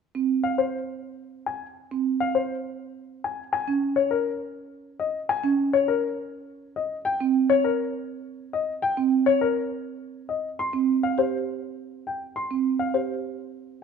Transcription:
0, 0, Header, 1, 3, 480
1, 0, Start_track
1, 0, Time_signature, 3, 2, 24, 8
1, 0, Tempo, 588235
1, 11288, End_track
2, 0, Start_track
2, 0, Title_t, "Grand piano"
2, 0, Program_c, 0, 0
2, 355, Note_on_c, 0, 77, 60
2, 475, Note_on_c, 0, 72, 46
2, 513, Note_off_c, 0, 77, 0
2, 633, Note_off_c, 0, 72, 0
2, 1195, Note_on_c, 0, 80, 47
2, 1353, Note_off_c, 0, 80, 0
2, 1799, Note_on_c, 0, 77, 63
2, 1916, Note_on_c, 0, 72, 48
2, 1954, Note_off_c, 0, 77, 0
2, 2073, Note_off_c, 0, 72, 0
2, 2646, Note_on_c, 0, 80, 51
2, 2797, Note_off_c, 0, 80, 0
2, 2878, Note_on_c, 0, 80, 64
2, 3034, Note_off_c, 0, 80, 0
2, 3232, Note_on_c, 0, 73, 64
2, 3352, Note_on_c, 0, 70, 55
2, 3392, Note_off_c, 0, 73, 0
2, 3512, Note_off_c, 0, 70, 0
2, 4076, Note_on_c, 0, 75, 58
2, 4233, Note_off_c, 0, 75, 0
2, 4318, Note_on_c, 0, 80, 70
2, 4474, Note_off_c, 0, 80, 0
2, 4679, Note_on_c, 0, 73, 72
2, 4799, Note_on_c, 0, 70, 58
2, 4834, Note_off_c, 0, 73, 0
2, 4954, Note_off_c, 0, 70, 0
2, 5517, Note_on_c, 0, 75, 55
2, 5673, Note_off_c, 0, 75, 0
2, 5753, Note_on_c, 0, 79, 73
2, 5912, Note_off_c, 0, 79, 0
2, 6117, Note_on_c, 0, 73, 74
2, 6237, Note_on_c, 0, 70, 58
2, 6273, Note_off_c, 0, 73, 0
2, 6394, Note_off_c, 0, 70, 0
2, 6963, Note_on_c, 0, 75, 59
2, 7116, Note_off_c, 0, 75, 0
2, 7200, Note_on_c, 0, 79, 71
2, 7355, Note_off_c, 0, 79, 0
2, 7558, Note_on_c, 0, 73, 73
2, 7681, Note_on_c, 0, 70, 57
2, 7714, Note_off_c, 0, 73, 0
2, 7835, Note_off_c, 0, 70, 0
2, 8395, Note_on_c, 0, 75, 52
2, 8553, Note_off_c, 0, 75, 0
2, 8644, Note_on_c, 0, 84, 65
2, 8796, Note_off_c, 0, 84, 0
2, 9003, Note_on_c, 0, 77, 63
2, 9127, Note_on_c, 0, 72, 52
2, 9156, Note_off_c, 0, 77, 0
2, 9277, Note_off_c, 0, 72, 0
2, 9848, Note_on_c, 0, 79, 46
2, 9997, Note_off_c, 0, 79, 0
2, 10085, Note_on_c, 0, 84, 59
2, 10236, Note_off_c, 0, 84, 0
2, 10440, Note_on_c, 0, 77, 58
2, 10559, Note_on_c, 0, 72, 44
2, 10595, Note_off_c, 0, 77, 0
2, 10714, Note_off_c, 0, 72, 0
2, 11288, End_track
3, 0, Start_track
3, 0, Title_t, "Marimba"
3, 0, Program_c, 1, 12
3, 122, Note_on_c, 1, 60, 47
3, 275, Note_off_c, 1, 60, 0
3, 1562, Note_on_c, 1, 60, 48
3, 1715, Note_off_c, 1, 60, 0
3, 3000, Note_on_c, 1, 61, 53
3, 3154, Note_off_c, 1, 61, 0
3, 4436, Note_on_c, 1, 61, 59
3, 4593, Note_off_c, 1, 61, 0
3, 5879, Note_on_c, 1, 60, 59
3, 6034, Note_off_c, 1, 60, 0
3, 7322, Note_on_c, 1, 60, 56
3, 7475, Note_off_c, 1, 60, 0
3, 8758, Note_on_c, 1, 60, 53
3, 8914, Note_off_c, 1, 60, 0
3, 9122, Note_on_c, 1, 67, 54
3, 9275, Note_off_c, 1, 67, 0
3, 10206, Note_on_c, 1, 60, 48
3, 10357, Note_off_c, 1, 60, 0
3, 10563, Note_on_c, 1, 67, 44
3, 10716, Note_off_c, 1, 67, 0
3, 11288, End_track
0, 0, End_of_file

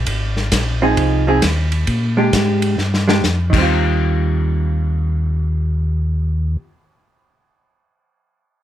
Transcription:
0, 0, Header, 1, 4, 480
1, 0, Start_track
1, 0, Key_signature, -3, "major"
1, 0, Tempo, 451603
1, 71, Time_signature, 4, 2, 24, 8
1, 9175, End_track
2, 0, Start_track
2, 0, Title_t, "Hollow-body jazz guitar"
2, 0, Program_c, 0, 26
2, 873, Note_on_c, 0, 60, 69
2, 874, Note_on_c, 0, 53, 62
2, 882, Note_on_c, 0, 63, 72
2, 886, Note_on_c, 0, 68, 67
2, 1317, Note_off_c, 0, 60, 0
2, 1318, Note_off_c, 0, 53, 0
2, 1322, Note_off_c, 0, 63, 0
2, 1324, Note_off_c, 0, 68, 0
2, 1352, Note_on_c, 0, 53, 65
2, 1361, Note_on_c, 0, 60, 63
2, 1365, Note_on_c, 0, 63, 64
2, 1368, Note_on_c, 0, 68, 72
2, 1499, Note_off_c, 0, 53, 0
2, 1503, Note_off_c, 0, 60, 0
2, 1505, Note_off_c, 0, 63, 0
2, 1507, Note_off_c, 0, 68, 0
2, 2307, Note_on_c, 0, 56, 60
2, 2313, Note_on_c, 0, 62, 62
2, 2319, Note_on_c, 0, 67, 74
2, 2919, Note_off_c, 0, 56, 0
2, 2922, Note_off_c, 0, 62, 0
2, 2925, Note_off_c, 0, 67, 0
2, 3269, Note_on_c, 0, 56, 63
2, 3276, Note_on_c, 0, 62, 61
2, 3282, Note_on_c, 0, 67, 68
2, 3417, Note_off_c, 0, 56, 0
2, 3421, Note_off_c, 0, 62, 0
2, 3423, Note_off_c, 0, 67, 0
2, 3719, Note_on_c, 0, 51, 51
2, 3770, Note_on_c, 0, 55, 62
2, 3806, Note_on_c, 0, 60, 57
2, 3847, Note_on_c, 0, 65, 71
2, 6992, Note_off_c, 0, 51, 0
2, 7043, Note_off_c, 0, 55, 0
2, 7079, Note_off_c, 0, 60, 0
2, 7120, Note_off_c, 0, 65, 0
2, 9175, End_track
3, 0, Start_track
3, 0, Title_t, "Tonewheel organ"
3, 0, Program_c, 1, 16
3, 73, Note_on_c, 1, 32, 79
3, 538, Note_off_c, 1, 32, 0
3, 554, Note_on_c, 1, 34, 74
3, 1018, Note_off_c, 1, 34, 0
3, 1035, Note_on_c, 1, 36, 81
3, 1499, Note_off_c, 1, 36, 0
3, 1511, Note_on_c, 1, 39, 91
3, 1977, Note_off_c, 1, 39, 0
3, 1992, Note_on_c, 1, 46, 78
3, 2457, Note_off_c, 1, 46, 0
3, 2474, Note_on_c, 1, 44, 76
3, 2938, Note_off_c, 1, 44, 0
3, 2957, Note_on_c, 1, 43, 74
3, 3419, Note_off_c, 1, 43, 0
3, 3443, Note_on_c, 1, 41, 86
3, 3740, Note_off_c, 1, 41, 0
3, 3752, Note_on_c, 1, 39, 74
3, 6982, Note_off_c, 1, 39, 0
3, 9175, End_track
4, 0, Start_track
4, 0, Title_t, "Drums"
4, 69, Note_on_c, 9, 51, 54
4, 73, Note_on_c, 9, 36, 20
4, 175, Note_off_c, 9, 51, 0
4, 180, Note_off_c, 9, 36, 0
4, 389, Note_on_c, 9, 38, 31
4, 496, Note_off_c, 9, 38, 0
4, 549, Note_on_c, 9, 44, 63
4, 549, Note_on_c, 9, 51, 65
4, 552, Note_on_c, 9, 38, 62
4, 553, Note_on_c, 9, 36, 25
4, 656, Note_off_c, 9, 44, 0
4, 656, Note_off_c, 9, 51, 0
4, 658, Note_off_c, 9, 38, 0
4, 660, Note_off_c, 9, 36, 0
4, 1033, Note_on_c, 9, 51, 52
4, 1036, Note_on_c, 9, 36, 16
4, 1139, Note_off_c, 9, 51, 0
4, 1142, Note_off_c, 9, 36, 0
4, 1510, Note_on_c, 9, 44, 53
4, 1510, Note_on_c, 9, 51, 63
4, 1512, Note_on_c, 9, 38, 62
4, 1514, Note_on_c, 9, 36, 19
4, 1616, Note_off_c, 9, 44, 0
4, 1616, Note_off_c, 9, 51, 0
4, 1619, Note_off_c, 9, 38, 0
4, 1620, Note_off_c, 9, 36, 0
4, 1825, Note_on_c, 9, 51, 42
4, 1932, Note_off_c, 9, 51, 0
4, 1989, Note_on_c, 9, 51, 50
4, 1994, Note_on_c, 9, 36, 23
4, 2095, Note_off_c, 9, 51, 0
4, 2101, Note_off_c, 9, 36, 0
4, 2477, Note_on_c, 9, 36, 22
4, 2477, Note_on_c, 9, 44, 56
4, 2477, Note_on_c, 9, 51, 56
4, 2479, Note_on_c, 9, 38, 61
4, 2583, Note_off_c, 9, 36, 0
4, 2584, Note_off_c, 9, 44, 0
4, 2584, Note_off_c, 9, 51, 0
4, 2586, Note_off_c, 9, 38, 0
4, 2787, Note_on_c, 9, 51, 45
4, 2893, Note_off_c, 9, 51, 0
4, 2958, Note_on_c, 9, 38, 39
4, 3064, Note_off_c, 9, 38, 0
4, 3124, Note_on_c, 9, 38, 49
4, 3231, Note_off_c, 9, 38, 0
4, 3282, Note_on_c, 9, 38, 76
4, 3389, Note_off_c, 9, 38, 0
4, 3441, Note_on_c, 9, 44, 66
4, 3443, Note_on_c, 9, 38, 52
4, 3547, Note_off_c, 9, 44, 0
4, 3549, Note_off_c, 9, 38, 0
4, 3752, Note_on_c, 9, 36, 49
4, 3758, Note_on_c, 9, 49, 58
4, 3858, Note_off_c, 9, 36, 0
4, 3864, Note_off_c, 9, 49, 0
4, 9175, End_track
0, 0, End_of_file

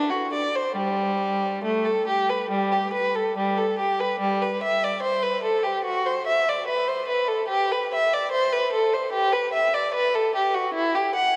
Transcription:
0, 0, Header, 1, 2, 480
1, 0, Start_track
1, 0, Key_signature, 1, "major"
1, 0, Tempo, 877193
1, 415, Time_signature, 4, 2, 24, 8
1, 1375, Tempo, 853485
1, 2335, Tempo, 819672
1, 4735, Tempo, 806452
1, 6547, End_track
2, 0, Start_track
2, 0, Title_t, "Violin"
2, 0, Program_c, 0, 40
2, 56, Note_on_c, 0, 66, 51
2, 175, Note_off_c, 0, 66, 0
2, 180, Note_on_c, 0, 74, 47
2, 295, Note_off_c, 0, 74, 0
2, 303, Note_on_c, 0, 72, 50
2, 418, Note_on_c, 0, 55, 59
2, 420, Note_off_c, 0, 72, 0
2, 888, Note_off_c, 0, 55, 0
2, 898, Note_on_c, 0, 57, 48
2, 1011, Note_on_c, 0, 69, 46
2, 1015, Note_off_c, 0, 57, 0
2, 1134, Note_off_c, 0, 69, 0
2, 1134, Note_on_c, 0, 67, 47
2, 1252, Note_off_c, 0, 67, 0
2, 1255, Note_on_c, 0, 71, 42
2, 1369, Note_on_c, 0, 55, 50
2, 1374, Note_off_c, 0, 71, 0
2, 1490, Note_off_c, 0, 55, 0
2, 1492, Note_on_c, 0, 67, 43
2, 1610, Note_on_c, 0, 71, 49
2, 1614, Note_off_c, 0, 67, 0
2, 1730, Note_off_c, 0, 71, 0
2, 1733, Note_on_c, 0, 69, 45
2, 1854, Note_off_c, 0, 69, 0
2, 1859, Note_on_c, 0, 55, 50
2, 1974, Note_on_c, 0, 69, 43
2, 1975, Note_off_c, 0, 55, 0
2, 2091, Note_on_c, 0, 67, 40
2, 2096, Note_off_c, 0, 69, 0
2, 2212, Note_off_c, 0, 67, 0
2, 2212, Note_on_c, 0, 71, 46
2, 2324, Note_on_c, 0, 55, 58
2, 2331, Note_off_c, 0, 71, 0
2, 2446, Note_off_c, 0, 55, 0
2, 2453, Note_on_c, 0, 71, 42
2, 2572, Note_off_c, 0, 71, 0
2, 2574, Note_on_c, 0, 76, 49
2, 2690, Note_off_c, 0, 76, 0
2, 2698, Note_on_c, 0, 74, 48
2, 2806, Note_on_c, 0, 72, 51
2, 2814, Note_off_c, 0, 74, 0
2, 2926, Note_off_c, 0, 72, 0
2, 2928, Note_on_c, 0, 71, 48
2, 3043, Note_on_c, 0, 69, 45
2, 3049, Note_off_c, 0, 71, 0
2, 3161, Note_on_c, 0, 67, 44
2, 3164, Note_off_c, 0, 69, 0
2, 3286, Note_off_c, 0, 67, 0
2, 3286, Note_on_c, 0, 66, 55
2, 3406, Note_off_c, 0, 66, 0
2, 3411, Note_on_c, 0, 72, 49
2, 3531, Note_off_c, 0, 72, 0
2, 3534, Note_on_c, 0, 76, 52
2, 3649, Note_off_c, 0, 76, 0
2, 3662, Note_on_c, 0, 74, 48
2, 3772, Note_on_c, 0, 71, 49
2, 3774, Note_off_c, 0, 74, 0
2, 3886, Note_off_c, 0, 71, 0
2, 3893, Note_on_c, 0, 72, 45
2, 4008, Note_on_c, 0, 71, 43
2, 4010, Note_off_c, 0, 72, 0
2, 4126, Note_on_c, 0, 69, 45
2, 4127, Note_off_c, 0, 71, 0
2, 4244, Note_on_c, 0, 67, 61
2, 4251, Note_off_c, 0, 69, 0
2, 4369, Note_off_c, 0, 67, 0
2, 4383, Note_on_c, 0, 71, 50
2, 4501, Note_off_c, 0, 71, 0
2, 4516, Note_on_c, 0, 76, 50
2, 4624, Note_off_c, 0, 76, 0
2, 4627, Note_on_c, 0, 74, 51
2, 4732, Note_on_c, 0, 72, 55
2, 4741, Note_off_c, 0, 74, 0
2, 4852, Note_off_c, 0, 72, 0
2, 4859, Note_on_c, 0, 71, 49
2, 4977, Note_off_c, 0, 71, 0
2, 4977, Note_on_c, 0, 69, 48
2, 5094, Note_off_c, 0, 69, 0
2, 5102, Note_on_c, 0, 72, 44
2, 5213, Note_on_c, 0, 67, 55
2, 5218, Note_off_c, 0, 72, 0
2, 5331, Note_off_c, 0, 67, 0
2, 5336, Note_on_c, 0, 71, 50
2, 5455, Note_off_c, 0, 71, 0
2, 5455, Note_on_c, 0, 76, 49
2, 5572, Note_off_c, 0, 76, 0
2, 5581, Note_on_c, 0, 74, 50
2, 5698, Note_off_c, 0, 74, 0
2, 5702, Note_on_c, 0, 71, 55
2, 5815, Note_off_c, 0, 71, 0
2, 5825, Note_on_c, 0, 69, 51
2, 5939, Note_off_c, 0, 69, 0
2, 5943, Note_on_c, 0, 67, 49
2, 6056, Note_off_c, 0, 67, 0
2, 6060, Note_on_c, 0, 66, 46
2, 6175, Note_on_c, 0, 64, 63
2, 6177, Note_off_c, 0, 66, 0
2, 6292, Note_off_c, 0, 64, 0
2, 6301, Note_on_c, 0, 67, 52
2, 6418, Note_off_c, 0, 67, 0
2, 6421, Note_on_c, 0, 78, 58
2, 6536, Note_off_c, 0, 78, 0
2, 6547, End_track
0, 0, End_of_file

